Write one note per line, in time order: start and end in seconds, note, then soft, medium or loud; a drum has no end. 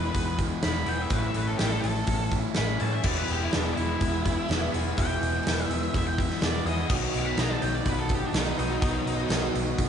0.00 0.87 E3 medium
0.00 0.86 G#3 medium
0.00 1.12 G#3 medium
0.00 0.86 B3 medium
0.00 0.38 E4 medium
0.00 0.86 E4 medium
0.00 1.07 E4 medium
0.00 1.10 G#4 medium
0.00 0.36 B4 medium
0.00 1.10 B4 medium
0.00 1.08 E5 medium
0.14 0.50 E1 medium
0.14 0.63 B3 medium
0.14 kick medium
0.14 open hi-hat medium
0.38 1.60 E4 medium
0.38 kick medium
0.38 open hi-hat medium
0.63 0.82 E1 medium
0.63 1.12 B3 medium
0.63 0.87 B5 loud
0.63 snare loud
0.63 open hi-hat medium
0.86 1.05 E1 medium
0.86 2.80 E3 medium
0.86 1.11 E3 medium
0.86 1.10 G#3 medium
0.86 1.10 B3 medium
0.86 1.13 E4 medium
0.86 1.02 G5 medium
0.86 open hi-hat medium
1.02 1.13 E5 medium
1.08 1.29 A1 loud
1.08 2.78 A2 medium
1.08 2.82 E3 medium
1.08 2.79 A3 loud
1.08 2.79 C#4 medium
1.08 3.01 E4 medium
1.08 3.02 A4 medium
1.08 3.02 C#5 medium
1.08 3.01 E5 medium
1.08 kick loud
1.08 open hi-hat medium
1.13 2.33 A2 medium
1.13 2.79 E4 medium
1.13 1.24 B4 loud
1.27 1.37 E5 medium
1.34 1.53 A1 medium
1.34 1.84 A3 medium
1.34 1.47 B4 medium
1.34 open hi-hat medium
1.47 1.57 A4 medium
1.58 1.78 A1 medium
1.58 2.32 E4 medium
1.58 1.68 G4 medium
1.58 snare loud
1.58 open hi-hat medium
1.68 1.80 A4 medium
1.81 2.02 A1 medium
1.81 2.29 A4 loud
1.81 open hi-hat medium
1.85 3.05 A3 medium
2.07 2.44 A1 medium
2.07 2.55 C#4 medium
2.07 kick medium
2.07 open hi-hat medium
2.31 3.53 E4 medium
2.31 kick medium
2.31 open hi-hat medium
2.54 2.75 A1 medium
2.54 3.05 C#4 medium
2.54 2.80 B5 loud
2.54 snare loud
2.54 open hi-hat medium
2.79 2.99 A2 medium
2.79 3.04 A2 medium
2.79 3.05 E3 medium
2.79 3.03 E3 medium
2.79 3.04 A3 medium
2.79 3.03 C#4 medium
2.79 3.05 E4 medium
2.79 2.92 A5 medium
2.79 open hi-hat medium
2.93 3.05 E5 medium
3.03 3.22 E1 loud
3.03 3.40 E2 medium
3.03 3.40 B2 medium
3.03 3.40 E3 medium
3.03 4.71 E3 medium
3.03 4.26 E3 medium
3.03 4.72 G#3 medium
3.03 3.40 B3 medium
3.03 4.73 B3 medium
3.03 3.39 E4 medium
3.03 4.71 E4 medium
3.03 6.88 E4 medium
3.03 3.38 G#4 medium
3.03 6.87 B4 medium
3.03 3.15 D5 loud
3.03 6.87 E5 medium
3.03 kick loud
3.03 crash medium
3.07 6.88 G#4 medium
3.16 3.28 B4 medium
3.28 3.47 E1 medium
3.28 3.78 G#3 medium
3.28 3.42 G4 medium
3.28 open hi-hat medium
3.39 3.49 E3 soft
3.39 3.50 B3 soft
3.39 3.50 E4 medium
3.39 3.50 G#4 medium
3.43 3.53 E4 medium
3.49 3.63 E2 medium
3.49 3.64 B2 medium
3.49 3.63 E3 medium
3.49 3.63 B3 medium
3.49 3.75 D4 loud
3.49 3.61 E4 medium
3.49 3.61 G#4 medium
3.49 snare loud
3.49 open hi-hat medium
3.54 3.72 E1 medium
3.54 4.25 E4 medium
3.62 3.87 E3 soft
3.62 3.86 B3 soft
3.62 3.86 E4 soft
3.62 3.85 G#4 soft
3.75 3.95 E1 medium
3.75 4.70 E4 loud
3.75 open hi-hat medium
3.80 4.99 G#3 medium
3.86 4.12 E3 soft
3.86 4.12 B3 soft
3.86 4.11 E4 soft
3.86 4.10 G#4 soft
4.01 4.37 E1 medium
4.01 4.52 B3 medium
4.01 kick medium
4.01 open hi-hat medium
4.11 4.22 E3 soft
4.11 4.23 B3 soft
4.11 4.24 E4 soft
4.11 4.24 G#4 medium
4.24 4.48 E3 medium
4.24 4.48 B3 medium
4.24 4.48 E4 medium
4.24 5.46 E4 medium
4.24 4.48 G#4 medium
4.24 kick medium
4.24 open hi-hat medium
4.48 4.67 E1 medium
4.48 4.73 E2 medium
4.48 4.73 B2 medium
4.48 4.69 E3 loud
4.48 4.69 B3 medium
4.48 5.93 B3 medium
4.48 4.70 E4 loud
4.48 4.71 G#4 loud
4.48 snare loud
4.48 open hi-hat medium
4.70 4.92 E1 medium
4.70 4.84 E3 medium
4.70 4.96 G#3 medium
4.70 4.83 B3 medium
4.70 4.98 B3 medium
4.70 4.82 E4 medium
4.70 4.96 E4 medium
4.70 4.81 G#4 medium
4.74 4.95 E3 medium
4.74 4.99 E3 medium
4.74 open hi-hat medium
4.83 4.96 E3 soft
4.83 4.96 B3 medium
4.83 4.96 E4 medium
4.83 4.96 G#4 medium
4.97 5.15 E1 medium
4.97 5.33 E2 medium
4.97 5.33 B2 medium
4.97 6.64 E3 medium
4.97 5.32 E3 medium
4.97 6.19 E3 medium
4.97 6.65 G#3 medium
4.97 5.32 B3 medium
4.97 6.66 B3 medium
4.97 5.31 E4 medium
4.97 6.65 E4 medium
4.97 5.30 G#4 medium
4.97 5.65 G5 loud
4.97 kick loud
4.97 open hi-hat medium
5.21 5.39 E1 medium
5.21 5.69 G#3 medium
5.21 open hi-hat medium
5.32 5.42 E3 soft
5.32 5.42 B3 soft
5.32 5.42 E4 medium
5.32 5.43 G#4 medium
5.42 5.64 E1 medium
5.42 5.56 E2 medium
5.42 5.56 B2 medium
5.42 5.56 E3 medium
5.42 5.56 B3 medium
5.42 5.56 E4 medium
5.42 5.55 G#4 medium
5.47 6.17 E4 medium
5.47 snare loud
5.47 open hi-hat medium
5.57 5.81 E3 soft
5.57 5.80 B3 medium
5.57 5.80 E4 medium
5.57 5.79 G#4 medium
5.65 5.87 E1 medium
5.65 5.92 E5 loud
5.71 6.91 G#3 medium
5.71 open hi-hat medium
5.80 6.06 E3 soft
5.80 6.06 B3 soft
5.80 6.06 E4 soft
5.80 6.05 G#4 soft
5.93 6.30 E1 medium
5.93 6.42 B3 medium
5.93 6.07 E5 medium
5.93 kick medium
5.93 open hi-hat medium
6.07 6.16 E3 soft
6.07 6.17 B3 soft
6.07 6.18 E4 medium
6.07 6.18 G#4 medium
6.07 6.19 G5 medium
6.17 6.41 E3 medium
6.17 6.40 B3 medium
6.17 6.90 E4 medium
6.17 6.40 E4 medium
6.17 6.41 G#4 medium
6.17 6.42 E5 medium
6.17 kick medium
6.17 open hi-hat medium
6.30 snare soft
6.41 6.60 E1 medium
6.41 6.66 E2 medium
6.41 6.66 B2 medium
6.41 6.62 E3 medium
6.41 6.63 B3 medium
6.41 7.86 B3 medium
6.41 6.65 E4 medium
6.41 6.65 G#4 medium
6.41 6.65 D5 medium
6.41 snare loud
6.41 open hi-hat medium
6.64 6.84 E2 medium
6.64 6.77 E3 medium
6.64 6.89 E3 medium
6.64 6.88 E3 medium
6.64 6.78 B3 medium
6.64 6.89 B3 medium
6.64 6.89 E4 medium
6.64 6.76 E4 medium
6.64 6.76 G#4 medium
6.64 6.90 D#5 loud
6.64 open hi-hat medium
6.68 6.89 G#3 medium
6.77 6.90 E3 soft
6.77 6.91 B3 soft
6.77 6.90 E4 medium
6.77 6.90 G#4 medium
6.87 7.08 B1 loud
6.87 8.56 B2 medium
6.87 8.11 B2 medium
6.87 7.26 B2 medium
6.87 8.57 D#3 medium
6.87 8.57 F#3 medium
6.87 7.27 F#3 medium
6.87 8.57 B3 medium
6.87 8.57 D#4 loud
6.87 9.89 D#4 medium
6.87 kick loud
6.87 crash medium
6.92 7.25 B3 medium
6.92 7.24 D#4 medium
6.92 7.24 F#4 medium
6.92 9.89 F#4 medium
6.92 9.89 B4 medium
6.92 9.89 D#5 medium
7.13 7.32 B1 medium
7.13 7.60 F#3 medium
7.13 open hi-hat medium
7.17 7.26 D6 loud
7.25 7.37 B3 soft
7.25 7.38 D#4 soft
7.25 7.38 F#4 medium
7.25 7.40 B5 medium
7.37 7.56 B1 medium
7.37 7.50 B2 medium
7.37 7.50 F#3 medium
7.37 7.50 B3 medium
7.37 8.09 D#4 medium
7.37 7.48 D#4 medium
7.37 7.47 F#4 medium
7.37 7.51 A#5 loud
7.37 snare loud
7.37 open hi-hat medium
7.48 7.97 B3 soft
7.48 7.97 D#4 soft
7.48 7.95 F#4 medium
7.48 7.62 A5 medium
7.61 7.80 B1 medium
7.61 8.83 F#3 medium
7.61 7.74 G5 medium
7.61 open hi-hat medium
7.75 7.89 D5 medium
7.86 8.22 B1 medium
7.86 8.34 B3 medium
7.86 8.00 B4 medium
7.86 kick medium
7.86 open hi-hat medium
7.96 8.07 B3 soft
7.96 8.08 D#4 medium
7.96 8.09 F#4 medium
7.96 8.11 A4 medium
8.08 8.32 F#3 medium
8.08 8.32 B3 medium
8.08 8.33 D#4 medium
8.08 9.31 D#4 medium
8.08 8.33 F#4 medium
8.08 kick medium
8.08 open hi-hat medium
8.15 8.25 G4 medium
8.26 8.37 D4 loud
8.32 8.52 B1 medium
8.32 8.58 B2 medium
8.32 8.55 F#3 medium
8.32 8.56 B3 medium
8.32 9.56 B3 medium
8.32 8.56 D#4 medium
8.32 8.57 F#4 medium
8.32 snare loud
8.32 open hi-hat medium
8.39 9.31 D#4 loud
8.56 8.77 B1 medium
8.56 8.70 F#3 medium
8.56 8.80 F#3 medium
8.56 8.70 B3 medium
8.56 8.81 B3 medium
8.56 8.70 D#4 medium
8.56 8.83 D#4 medium
8.56 8.69 F#4 medium
8.56 open hi-hat medium
8.60 8.79 B2 medium
8.60 8.83 B2 medium
8.60 8.81 D#3 medium
8.70 8.81 B3 soft
8.70 8.82 D#4 medium
8.70 8.82 F#4 medium
8.80 9.01 B1 medium
8.80 9.89 B2 loud
8.80 9.19 B2 medium
8.80 9.89 D#3 medium
8.80 9.89 F#3 loud
8.80 9.19 F#3 medium
8.80 9.18 B3 medium
8.80 9.89 B3 medium
8.80 9.17 D#4 medium
8.80 9.89 D#4 loud
8.80 9.17 F#4 medium
8.80 kick loud
8.80 open hi-hat medium
8.84 9.89 B2 medium
9.05 9.24 B1 medium
9.05 9.55 F#3 medium
9.05 open hi-hat medium
9.18 9.28 B3 medium
9.18 9.30 D#4 medium
9.18 9.29 F#4 medium
9.29 9.48 B1 medium
9.29 9.42 B2 medium
9.29 9.42 F#3 medium
9.29 9.41 B3 loud
9.29 9.40 D#4 medium
9.29 9.89 D#4 medium
9.29 9.39 F#4 loud
9.29 snare loud
9.29 open hi-hat medium
9.40 9.89 B3 soft
9.40 9.89 D#4 medium
9.40 9.88 F#4 medium
9.55 9.73 B1 medium
9.55 9.89 F#3 medium
9.55 open hi-hat medium
9.78 9.89 B1 medium
9.78 9.89 B3 medium
9.78 kick medium
9.78 open hi-hat medium